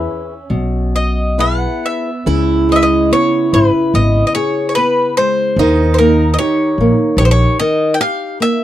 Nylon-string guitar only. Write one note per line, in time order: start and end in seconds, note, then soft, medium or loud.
0.00 0.33 E4 soft
0.00 0.32 G#4 soft
0.00 0.33 B4 medium
0.50 1.37 B2 medium
1.38 2.09 E4 soft
1.38 2.09 G#4 soft
1.38 2.09 B4 soft
2.26 5.54 C#3 medium
2.69 3.11 G#3 medium
3.12 3.53 B3 medium
3.54 3.94 E4 medium
3.94 4.34 B3 medium
4.36 4.75 G#4 medium
4.77 5.17 B3 medium
5.18 5.58 G#3 medium
5.60 7.59 D#3 medium
5.99 6.38 A#3 medium
6.40 6.78 G4 medium
6.81 7.18 A#3 medium
7.20 7.58 G4 medium
7.60 7.98 D#3 medium
8.00 8.38 G4 medium
8.40 8.64 A#3 medium